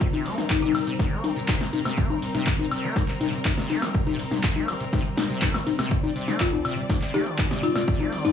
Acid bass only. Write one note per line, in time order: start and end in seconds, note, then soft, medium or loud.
0.01 0.08 C3 medium
0.13 0.27 C3 medium
0.26 0.39 A#3 loud
0.38 0.45 D3 medium
0.50 0.54 C3 medium
0.63 0.73 C3 loud
0.75 0.79 C3 medium
0.87 0.94 C3 medium
0.99 1.13 C3 medium
1.12 1.25 A#3 loud
1.24 1.31 D3 medium
1.36 1.40 C3 medium
1.49 1.59 C3 loud
1.61 1.65 C3 medium
1.73 1.80 C3 medium
1.85 1.99 C3 medium
1.98 2.12 A#3 loud
2.10 2.17 D3 medium
2.22 2.26 C3 medium
2.35 2.45 C3 loud
2.47 2.51 C3 medium
2.59 2.66 C3 medium
2.72 2.85 C3 medium
2.84 2.98 A#3 loud
2.96 3.03 D3 medium
3.08 3.12 C3 medium
3.21 3.31 C3 loud
3.33 3.37 C3 medium
3.45 3.52 C3 medium
3.58 3.71 C3 medium
3.70 3.84 A#3 loud
3.82 3.89 D3 medium
3.94 3.99 C3 medium
4.07 4.17 C3 loud
4.19 4.23 C3 medium
4.31 4.38 C3 medium
4.44 4.57 C3 medium
4.56 4.70 A#3 loud
4.68 4.75 D3 medium
4.81 4.85 C3 medium
4.93 5.03 C3 loud
5.05 5.09 C3 medium
5.17 5.24 C3 medium
5.30 5.44 C3 medium
5.42 5.56 A#3 loud
5.54 5.61 D3 medium
5.67 5.71 C3 medium
5.79 5.89 C3 loud
5.91 5.95 C3 medium
6.04 6.10 C3 medium
6.16 6.30 C3 medium
6.28 6.42 A#3 loud
6.40 6.54 D3 medium
6.53 6.63 C2 loud
6.65 6.75 C3 loud
6.77 6.81 C3 medium
6.90 6.96 C3 medium
7.02 7.16 C3 medium
7.14 7.28 A#3 loud
7.26 7.40 D3 medium
7.39 7.49 C2 loud
7.51 7.61 C3 loud
7.63 7.67 C3 medium
7.76 7.82 C3 medium
7.88 8.02 C3 medium
8.00 8.14 A#3 loud
8.12 8.26 D3 medium
8.25 8.32 C2 loud